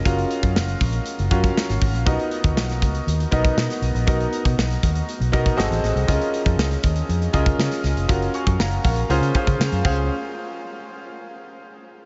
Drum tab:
CC |----------------|----------------|----------------|----------------|
HH |xxxx-xoxxxxx-xox|xxxx-xxxxxxx-xxx|xxxx-xxxxxxx-xxx|xxxx-xxxxxxx-xxx|
SD |----o-------oo--|----oo------oo--|----oo------ooo-|----oo------ooo-|
BD |o--o--o---oo--o-|o--o--o---oo----|o--o--o---oo----|o--o--o---oo----|

CC |--------------x-|----------------|
HH |xxxx-xoxxxxx-x--|----------------|
SD |----o-------o---|----------------|
BD |o--o--o---oo--o-|----------------|